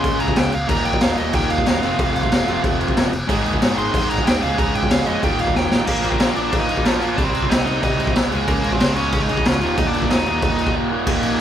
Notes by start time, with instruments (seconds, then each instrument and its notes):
Already playing: distorted electric guitar C#3 G#3 C#4, overdriven electric guitar C#3 G#3 C#4 F4 G#4, lead electric guitar C6
0.04 picked electric bass A#2, kick, crash
0.19 picked electric bass C#2, distorted electric guitar C#3 G#3 C#4, lead electric guitar A#5, crash
0.28 kick
0.36 picked electric bass C#2, lead electric guitar G5, snare, crash
0.52 picked electric bass C#2, lead electric guitar F5, crash
0.68 picked electric bass D#1, overdriven electric guitar D#2 A#2 D#3 G3 A#3 D#4, lead electric guitar A#5, kick, crash
0.85 picked electric bass A#1, lead electric guitar G5, crash
0.93 kick
1.01 picked electric bass D#1, lead electric guitar F5, snare, crash
1.16 picked electric bass D#1, distorted electric guitar D#2 A#2 D#3, lead electric guitar D#5, crash
1.33 picked electric bass C#2, overdriven electric guitar D#2 A#2 D#3 G3 A#3 D#4, lead electric guitar G5, kick, crash
1.50 picked electric bass D#1, lead electric guitar F5, crash
1.58 kick
1.65 picked electric bass D#1, distorted electric guitar D#2 A#2 D#3, lead electric guitar F5, snare, crash
1.82 picked electric bass F1, overdriven electric guitar F2 C3 F3 A3 C4 F4, crash
1.99 picked electric bass F1, kick, crash
2.15 picked electric bass C2, crash
2.23 kick
2.30 picked electric bass F1, distorted electric guitar F2 C3 F3, snare, crash
2.47 picked electric bass F1, overdriven electric guitar F2 C3 F3 A3 C4 F4, crash
2.64 picked electric bass D#2, kick, crash
2.79 picked electric bass F1, distorted electric guitar F2 C3 F3, crash
2.88 kick
2.97 picked electric bass F1, snare, crash
3.13 picked electric bass F1, crash
3.28 picked electric bass G#1, overdriven electric guitar G#2 D#3 G#3 C4 D#4, kick, crash
3.46 picked electric bass D#2, crash
3.53 kick
3.62 picked electric bass G#1, snare, crash
3.76 picked electric bass G#1, distorted electric guitar G#2 D#3 G#3, lead electric guitar C6, crash
3.93 picked electric bass F2, overdriven electric guitar G#2 D#3 G#3 C4 D#4, kick, crash
4.10 picked electric bass G#1, lead electric guitar A#5, crash
4.18 kick
4.25 picked electric bass D#2, distorted electric guitar G#2 D#3 G#3, lead electric guitar G5, snare, crash
4.41 picked electric bass C#2, overdriven electric guitar C#3 G#3 C#4 F4 G#4, lead electric guitar F5, crash
4.58 picked electric bass C#2, lead electric guitar A#5, kick, crash
4.74 picked electric bass G#2, lead electric guitar G5, crash
4.83 kick
4.89 picked electric bass C#2, distorted electric guitar C#3 G#3 C#4, lead electric guitar F5, snare, crash
5.06 picked electric bass F2, overdriven electric guitar C#3 G#3 C#4 F4 G#4, lead electric guitar D#5, crash
5.23 picked electric bass D#1, overdriven electric guitar D#2 A#2 D#3 G3 A#3 D#4, lead electric guitar G5, kick, crash
5.39 picked electric bass D#1, lead electric guitar F5, crash
5.47 kick
5.55 picked electric bass D#1, lead electric guitar G5, snare
5.70 picked electric bass A1, distorted electric guitar D#2 A#2 D#3, snare
5.86 picked electric bass A#1, overdriven electric guitar A#2 F3 A#3, lead electric guitar A#3 A#4, kick, crash
6.04 picked electric bass A#1, overdriven electric guitar A#2 F3 A#3, crash
6.10 lead electric guitar C4 C5, kick
6.20 picked electric bass A#1, overdriven electric guitar A#2 F3 A#3, snare, crash
6.35 picked electric bass A#1, overdriven electric guitar A#2 F3 A#3, lead electric guitar D4 D5, crash
6.52 picked electric bass A#1, overdriven electric guitar A#2 F3 A#3, kick, crash
6.59 lead electric guitar D#4 D#5
6.69 picked electric bass A#1, overdriven electric guitar A#2 F3 A#3, crash
6.77 kick
6.84 picked electric bass A#1, overdriven electric guitar A#2 F3 A#3, lead electric guitar F3 F4, snare, crash
7.01 overdriven electric guitar A#2 F3 A#3, crash
7.16 picked electric bass C2, overdriven electric guitar C3 G3 C4, lead electric guitar D4 D5, kick, crash
7.24 lead electric guitar C4 C5
7.34 overdriven electric guitar C3 G3 C4, crash
7.42 kick
7.50 picked electric bass C2, overdriven electric guitar C3 G3 C4, lead electric guitar D#4 D#5, snare, crash
7.66 picked electric bass C2, overdriven electric guitar C3 G3 C4, lead electric guitar D#4 D#5, crash
7.82 picked electric bass C2, overdriven electric guitar C3 G3 C4, lead electric guitar D#4 D#5, kick, crash
7.98 picked electric bass C2, overdriven electric guitar C3 G3 C4, crash
8.07 kick
8.15 picked electric bass C2, overdriven electric guitar C3 G3 C4, snare, crash
8.31 picked electric bass C#2, overdriven electric guitar C#3 G#3 C#4, crash
8.48 picked electric bass C#2, overdriven electric guitar C#3 G#3 C#4, lead electric guitar A#3 A#4, kick, crash
8.64 picked electric bass C#2, overdriven electric guitar C#3 G#3 C#4, crash
8.72 lead electric guitar C4 C5, kick
8.80 picked electric bass C#2, overdriven electric guitar C#3 G#3 C#4, snare, crash
8.96 picked electric bass C#2, overdriven electric guitar C#3 G#3 C#4, lead electric guitar C#4 C#5, crash
9.12 picked electric bass C#2, overdriven electric guitar C#3 G#3 C#4, kick, crash
9.22 lead electric guitar D#4 D#5
9.29 picked electric bass C#2, overdriven electric guitar C#3 G#3 C#4, crash
9.37 kick
9.45 picked electric bass C#2, overdriven electric guitar C#3 G#3 C#4, lead electric guitar F3 F4, snare, crash
9.61 picked electric bass D#1, overdriven electric guitar D#2 A#2 D#3, crash
9.77 picked electric bass D#1, overdriven electric guitar D#2 A#2 D#3, lead electric guitar D#4 D#5, kick, crash
9.87 lead electric guitar D4 D5
9.94 overdriven electric guitar D#2 A#2 D#3, crash
10.02 kick
10.10 picked electric bass D#1, overdriven electric guitar D#2 A#2 D#3, lead electric guitar D#4 D#5, snare, crash
10.26 picked electric bass D#1, overdriven electric guitar D#2 A#2 D#3, crash
10.42 picked electric bass D#1, overdriven electric guitar D#2 A#2 D#3, lead electric guitar D#4 D#5, kick, crash
10.58 picked electric bass D#1, overdriven electric guitar D#2 A#2 D#3, crash
10.67 kick
10.74 overdriven electric guitar D#2 A#2 D#3
10.91 overdriven electric guitar D#2 A#2 D#3
11.06 picked electric bass D#1, overdriven electric guitar D#2 A#2 D#3 G3 A#3 D#4, kick, crash
11.23 picked electric bass A#1, crash